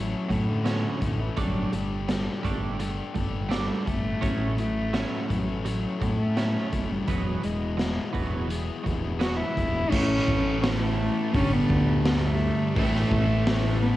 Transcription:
Already playing: A1 A2 F#3 A3 C#4 E4 A4
0.29 A2 F#3 A3 C#4 E4 A4, kick, closed hi-hat
0.49 D3
0.64 A2 F#3 A3 C#4 E4 A4, snare, closed hi-hat
1.00 A1 A2 F#3 A3 C#4 E4 A4, kick, closed hi-hat
1.21 E3
1.37 G1 F#3 G3 A3 D4 G4 A4, kick, closed hi-hat
1.72 G1 G3 A3 D4 G4 A4, closed hi-hat
2.08 G3 A3 D4 G4 A4, snare, closed hi-hat
2.43 G1 G3 A3 D4 G4 A4, kick, closed hi-hat
2.79 G3 A3 D4 G4 A4, closed hi-hat
3.14 G1 G3 A3 D4 G4 A4, kick, closed hi-hat
3.49 G3 A3 D4 G4 A4, snare, closed hi-hat
3.85 G1 G3 A3 D4 G4 A4, kick, closed hi-hat
4.21 A1 A2 F#3 A3 C#4 E4 A4, kick, closed hi-hat
4.57 A2 F#3 A3 C#4 E4 A4, closed hi-hat
4.93 A2 F#3 A3 C#4 E4 A4, snare, closed hi-hat
5.28 A1 A2 F#3 A3 C#4 E4 A4, kick, closed hi-hat
5.64 A2 F#3 A3 C#4 E4 A4, closed hi-hat
5.99 A2 F#3 A3 C#4 E4 A4, kick, closed hi-hat
6.17 A3
6.35 A2 F#3 A3 C#4 E4 A4, snare, closed hi-hat
6.70 F#1 A2 F#3 A3 C#4 E4 A4, kick, closed hi-hat
6.91 G3
7.05 E1 E3 F#3 G#3 B3 E4 G#4, kick, closed hi-hat
7.42 E1 E3 F#3 G#3 B3 E4 G#4, closed hi-hat
7.77 E3 F#3 G#3 B3 E4 G#4, snare, closed hi-hat
8.12 E1 E3 F#3 G#3 B3 E4 G#4, kick, closed hi-hat
8.48 E3 F#3 G#3 B3 E4 G#4, closed hi-hat
8.83 E1 E3 F#3 G#3 B3 E4 G#4, kick, closed hi-hat
9.19 E3 F#3 G#3 B3 E4 F#4, snare, closed hi-hat
9.23 G#4
9.37 E4
9.55 E1 E3 F#3 G#3 B3 E4 G#4, kick, closed hi-hat
9.90 A1 A2 E3 A3 C#4 E4 B4 C#5 A5, kick, crash
9.94 C#4 E4 A4
10.28 A1, kick
10.62 C#4, snare, open hi-hat
10.79 A3
11.33 G1 G2 D3 G3 A3 C#4 D4 G4 A4 D5, kick, open hi-hat
11.37 G3 G4
11.53 B3
11.69 D2, kick
12.05 B3, snare, open hi-hat
12.23 A3
12.76 A1 A2 E3 A3 C#4 E4 B4 C#5 A5, kick, open hi-hat
12.95 snare
13.11 A1, kick
13.47 snare, open hi-hat
13.81 B3

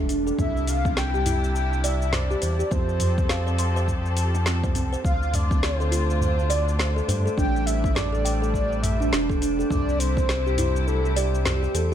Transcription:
Already playing: E1 G3 A3 D4
0.09 D4, open hi-hat, shaker
0.27 A4, shaker
0.38 C2 C3 D4 E4 E5, kick, mid tom, shaker
0.57 shaker
0.67 F5, open hi-hat, shaker
0.85 C4, kick, shaker
0.97 G5, snare, shaker
1.14 G4, shaker
1.26 E4, mid tom, open hi-hat, shaker
1.44 shaker
1.56 G5, shaker
1.73 shaker
1.84 D5 E5, open hi-hat, shaker
2.02 shaker
2.13 C5 D5, snare, mid tom, shaker
2.31 G4, shaker
2.42 E2 C5, open hi-hat, shaker
2.59 G4, shaker
2.71 F2 F3 C4 G4 A4 C5, kick, shaker
2.89 shaker
3.00 mid tom, open hi-hat, shaker
3.18 kick, shaker
3.29 F5, snare, shaker
3.47 C5, shaker
3.58 C6, open hi-hat, shaker
3.76 C5, shaker
3.88 kick, mid tom, shaker
4.06 shaker
4.17 open hi-hat, shaker
4.35 C4, shaker
4.46 C4, snare, shaker
4.64 C5, kick, shaker
4.75 C2 C4, mid tom, open hi-hat, shaker
4.93 C5, shaker
5.04 D2 D3 A3 C4 D4 F4 C5 F5, kick, shaker
5.23 shaker
5.34 D5, mid tom, open hi-hat, shaker
5.51 C4, kick, shaker
5.63 C5, snare, shaker
5.80 A4, shaker
5.92 F4, open hi-hat, shaker
6.10 shaker
6.21 C5, mid tom, shaker
6.39 shaker
6.50 D5, open hi-hat, shaker
6.68 shaker
6.79 C5, snare, shaker
6.96 A4, shaker
7.08 G2 C5, mid tom, open hi-hat, shaker
7.26 A4, shaker
7.37 A1 G3 D4 G5, kick, shaker
7.56 shaker
7.66 E5, open hi-hat, shaker
7.84 kick, shaker
7.95 D5, snare, mid tom, shaker
8.13 A4, shaker
8.25 G5, open hi-hat, shaker
8.42 A4, shaker
8.53 D5, kick, shaker
8.72 shaker
8.83 E5, mid tom, open hi-hat, shaker
9.00 D4, shaker
9.12 E1 D4, snare, shaker
9.30 A4, kick, shaker
9.41 D4, open hi-hat, shaker
9.59 A4, shaker
9.70 C2 C3 G3 E4 D5, kick, mid tom, shaker
9.89 shaker
9.99 C5, open hi-hat, shaker
10.17 C4, kick, shaker
10.29 snare, shaker
10.46 G4, shaker
10.58 E4, mid tom, open hi-hat, shaker
10.76 shaker
10.87 A4, shaker
11.05 shaker
11.16 G4 D5, open hi-hat, shaker
11.35 shaker
11.45 G4 C5, snare, mid tom, shaker
11.63 G4, shaker
11.74 E2 A4 C5, open hi-hat, shaker

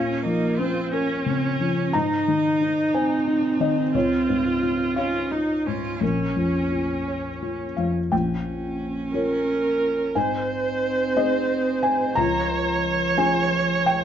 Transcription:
Already playing: A#2 C#4 F5
0.23 F3 A#3 D#4
0.57 C4 C#4 F4
0.90 C#4 A#4
1.25 C#3 C4
1.60 F3 C#4
1.93 G#2 D#4 A#5
2.28 D#3
2.61 D#4
2.94 C4 C5 G#5
3.27 D#4
3.60 D#3 D#5
3.94 C#2 F4 C#5
4.29 G#2
4.63 F4
4.96 C#4 F4 C#5 F5
5.31 D#4 F4
5.66 G#2 C#4 F4
6.01 A#1 C#4 A#4
6.36 F2
6.72 F4
7.08 C#5
7.42 F4
7.77 F2 F5
8.11 A#1 C#4 G5
9.14 F4 A#4 C#5
10.15 G#2 C4 C5 G#5
11.16 C4 D#4 G#4 D#5
11.83 G#5
12.15 C#2 F3 C#5 A#5
13.18 C#4 F4 G#4 G#5
13.86 G5

